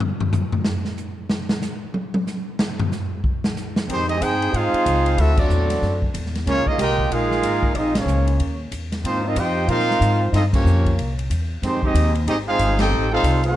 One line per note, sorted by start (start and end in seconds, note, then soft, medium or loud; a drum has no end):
0.00 floor tom loud
0.21 floor tom loud
0.33 floor tom loud
0.33 hi-hat pedal medium
0.53 floor tom loud
0.65 snare loud
0.85 snare medium
0.97 hi-hat pedal soft
1.30 snare loud
1.49 snare loud
1.62 snare medium
1.62 hi-hat pedal medium
1.94 high tom medium
2.14 high tom loud
2.27 snare soft
2.27 hi-hat pedal medium
2.59 snare loud
2.79 floor tom loud
2.92 snare soft
2.92 hi-hat pedal medium
3.24 kick medium
3.44 snare loud
3.57 snare soft
3.57 hi-hat pedal soft
3.76 snare loud
3.88 4.20 F2 medium
3.88 4.07 D#3 medium
3.88 4.07 G#3 medium
3.88 4.08 G#3 medium
3.88 4.07 C4 medium
3.88 4.08 D#4 medium
3.88 4.08 G4 medium
3.88 4.08 C5 loud
3.88 kick soft
3.88 ride medium
4.08 4.20 G#3 medium
4.08 4.18 C4 medium
4.08 4.21 C4 medium
4.08 4.18 D#4 medium
4.08 4.20 G4 medium
4.08 4.21 G#4 medium
4.08 4.21 D#5 loud
4.08 ride medium
4.19 4.52 G2 loud
4.19 4.52 C4 medium
4.19 4.52 D#4 loud
4.19 4.54 D#4 medium
4.19 4.52 G#4 medium
4.19 4.54 G#4 medium
4.19 4.54 C5 medium
4.19 4.54 G5 loud
4.19 kick soft
4.19 hi-hat pedal medium
4.19 ride medium
4.42 ride medium
4.53 4.72 G#2 medium
4.53 5.18 G#3 loud
4.53 5.16 C4 loud
4.53 5.19 D#4 medium
4.53 5.18 F4 loud
4.53 5.19 G#4 loud
4.53 5.19 C5 loud
4.53 5.19 F5 loud
4.53 kick soft
4.53 ride medium
4.73 muted upright bass stroke soft
4.73 ride medium
4.86 5.17 C#2 loud
4.86 kick soft
4.86 hi-hat pedal medium
4.86 ride medium
5.06 ride medium
5.17 5.49 D2 medium
5.17 5.36 A3 medium
5.17 5.37 C4 medium
5.17 5.37 E4 medium
5.17 5.37 F#4 medium
5.17 5.38 A4 medium
5.17 5.39 E5 loud
5.17 kick soft
5.17 ride medium
5.36 6.01 F#3 medium
5.36 6.02 A3 medium
5.36 6.03 C4 medium
5.36 6.02 D4 medium
5.36 6.03 F#4 medium
5.36 6.03 A4 medium
5.36 6.03 D5 medium
5.36 kick loud
5.36 crash medium
5.49 5.81 E2 loud
5.49 hi-hat pedal medium
5.70 snare soft
5.70 ride medium
5.82 6.13 F#2 medium
5.82 kick soft
5.82 snare soft
6.02 kick medium
6.14 6.45 E2 loud
6.14 kick soft
6.14 hi-hat pedal soft
6.14 ride medium
6.26 snare soft
6.35 snare soft
6.35 ride medium
6.46 6.65 C#2 medium
6.46 6.65 G#3 medium
6.46 6.65 A#3 medium
6.46 6.66 A#3 medium
6.46 6.65 C#4 medium
6.46 6.66 F4 medium
6.46 6.66 G#4 medium
6.46 6.66 C#5 loud
6.46 kick soft
6.46 snare soft
6.46 ride medium
6.66 6.78 G#3 medium
6.66 6.79 A#3 medium
6.66 6.76 A#3 medium
6.66 6.79 D#4 medium
6.66 6.79 F4 medium
6.66 6.80 G#4 medium
6.66 6.79 D#5 loud
6.66 muted upright bass stroke soft
6.66 kick medium
6.78 7.10 C2 loud
6.78 7.09 G#3 loud
6.78 7.08 A#3 loud
6.78 7.10 F4 loud
6.78 7.08 G4 loud
6.78 7.10 A#4 loud
6.78 7.10 D#5 loud
6.78 7.10 G5 loud
6.78 kick soft
6.78 snare soft
6.78 hi-hat pedal medium
6.78 ride loud
6.99 kick medium
7.11 7.42 A#1 medium
7.11 7.73 G#3 loud
7.11 7.73 A#3 loud
7.11 7.74 D#4 loud
7.11 7.73 F4 loud
7.11 7.74 G#4 loud
7.11 7.74 A#4 loud
7.11 7.73 F5 loud
7.11 kick soft
7.11 ride medium
7.31 snare soft
7.43 7.74 G#1 medium
7.43 kick soft
7.43 hi-hat pedal soft
7.43 ride medium
7.63 kick medium
7.74 8.05 A#1 medium
7.74 7.97 D#4 medium
7.74 7.76 D5 medium
7.74 kick soft
7.74 ride medium
7.78 7.97 C4 medium
7.78 7.97 F4 medium
7.78 7.97 G#4 medium
7.78 7.97 D#5 loud
7.95 8.37 F3 medium
7.95 8.37 G#3 medium
7.95 8.57 A#3 medium
7.95 8.56 C#4 medium
7.95 8.38 F4 medium
7.95 8.39 G#4 medium
7.95 8.57 C#5 medium
7.95 snare loud
7.95 ride medium
8.06 8.38 C#2 loud
8.06 hi-hat pedal medium
8.27 ride medium
8.39 8.71 D#2 medium
8.39 kick soft
8.39 ride medium
8.72 9.03 E2 medium
8.72 kick soft
8.72 hi-hat pedal medium
8.72 ride medium
8.92 snare medium
8.92 ride medium
9.04 9.35 G#2 loud
9.04 9.23 D#3 medium
9.04 9.23 F3 medium
9.04 9.24 A#3 medium
9.04 9.23 C4 medium
9.04 9.24 D#4 medium
9.04 9.24 F4 medium
9.04 9.24 C5 loud
9.04 kick soft
9.04 ride medium
9.24 9.37 F3 medium
9.24 9.35 C4 medium
9.24 9.38 C4 medium
9.24 9.35 D#4 medium
9.24 9.38 F4 medium
9.24 9.38 A#4 medium
9.24 9.38 D#5 medium
9.36 9.67 F2 loud
9.36 9.67 C4 medium
9.36 9.69 D#4 medium
9.36 9.70 F4 loud
9.36 9.70 G4 loud
9.36 9.69 C5 loud
9.36 9.70 D#5 loud
9.36 9.70 G5 loud
9.36 kick soft
9.36 hi-hat pedal medium
9.36 ride medium
9.68 10.00 A#2 medium
9.68 10.29 F3 medium
9.68 10.29 C4 loud
9.68 10.30 D#4 loud
9.68 10.29 F4 loud
9.68 10.30 A#4 loud
9.68 10.30 C5 loud
9.68 10.30 F5 loud
9.68 kick soft
9.68 ride medium
9.80 snare soft
9.91 snare medium
10.01 10.32 G#2 loud
10.01 kick soft
10.01 hi-hat pedal medium
10.01 ride medium
10.33 10.64 G2 medium
10.33 10.44 C4 medium
10.33 10.42 D#4 medium
10.33 10.44 F4 medium
10.33 10.43 A4 medium
10.33 10.44 D#5 loud
10.33 kick soft
10.33 snare soft
10.33 ride medium
10.53 10.95 F3 medium
10.53 11.13 A#3 medium
10.53 11.14 A#3 medium
10.53 10.94 C#4 medium
10.53 10.96 F4 medium
10.53 10.95 G4 medium
10.53 10.95 C#5 loud
10.53 kick loud
10.53 crash medium
10.65 10.96 F2 loud
10.65 hi-hat pedal medium
10.86 kick medium
10.86 ride medium
10.98 11.29 C2 medium
10.98 kick soft
10.98 ride medium
11.19 ride medium
11.30 11.61 E2 medium
11.30 kick soft
11.30 hi-hat pedal medium
11.30 ride medium
11.62 11.93 F2 loud
11.62 11.81 D#3 medium
11.62 11.82 G#3 medium
11.62 11.82 C4 medium
11.62 11.82 D#4 medium
11.62 11.82 G4 medium
11.62 11.82 C5 loud
11.62 kick soft
11.62 snare soft
11.62 ride medium
11.83 12.13 G#3 medium
11.83 12.13 C4 medium
11.83 12.13 D#4 medium
11.83 12.13 G4 medium
11.83 12.13 G#4 medium
11.83 12.13 D#5 medium
11.83 kick medium
11.94 12.26 D#2 loud
11.94 kick soft
11.94 hi-hat pedal medium
11.94 ride loud
12.15 ride medium
12.26 12.58 G#1 medium
12.26 12.37 G#3 medium
12.26 12.37 C4 loud
12.26 12.37 C4 medium
12.26 12.37 D#4 medium
12.26 12.37 G4 medium
12.26 12.37 G#4 medium
12.26 12.38 D#5 loud
12.26 kick soft
12.26 ride medium
12.47 12.78 G#3 loud
12.47 12.77 C4 medium
12.47 12.77 D#4 loud
12.47 12.77 F4 medium
12.47 12.77 G#4 loud
12.47 12.77 C5 medium
12.47 12.77 F5 loud
12.58 12.90 G1 loud
12.58 kick soft
12.58 hi-hat pedal medium
12.58 ride medium
12.79 13.09 C4 loud
12.79 13.09 D#4 loud
12.79 13.10 D#4 loud
12.79 13.09 G4 medium
12.79 13.10 A4 loud
12.79 13.10 C5 loud
12.79 13.10 G5 loud
12.79 snare medium
12.79 ride medium
12.90 13.22 A1 loud
13.13 13.42 G3 medium
13.13 13.42 C4 loud
13.13 13.42 D#4 loud
13.13 13.42 F4 medium
13.13 13.42 A4 loud
13.13 13.42 C5 loud
13.13 13.42 F5 loud
13.23 13.54 C2 loud
13.23 kick soft
13.23 hi-hat pedal medium
13.23 ride medium
13.43 13.56 A3 medium
13.43 13.56 C4 medium
13.43 13.56 D#4 medium
13.43 13.56 F#4 medium
13.43 13.56 A4 medium
13.43 13.56 C5 medium
13.43 13.56 F#5 loud
13.43 ride medium